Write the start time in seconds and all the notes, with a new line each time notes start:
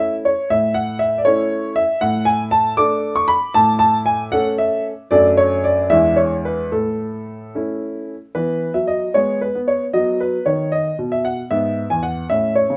Already playing: A3 C#4 E4
0.00 E5
0.25 C#5
0.50 A2 E5
0.74 F#5
0.99 E5
1.18 D5
1.25 A3 C#4 E4 C#5
1.76 E5
2.01 A2 F#5
2.25 G#5
2.51 A5
2.77 A3 D4 A4 D6
3.16 C#6
3.28 B5
3.54 A2 A5
3.79 A5
4.06 G#5
4.32 A3 C#4 A4 F#5
4.58 E5
5.11 F#2 A3 D4 A4 D5
5.37 C#5
5.64 D5
5.90 E2 G#3 D4 E4 E5
6.16 C#5
6.45 B4
6.72 A2 A4
7.55 A3 C#4 E4
8.35 E3 B3 B4
8.74 F#3 E5
8.87 D#5
9.14 G#3 B3 C#5
9.41 B4
9.55 B3
9.68 C#5
9.93 F#3 B3 D#5
10.20 B4
10.46 D#3 C#5
10.72 D#5
10.99 B2
11.12 E5
11.25 F#5
11.51 G#2 B3 E5
11.90 E2 G#5
12.03 F#5
12.30 A2 C#4 E5
12.55 C#5
12.70 C#3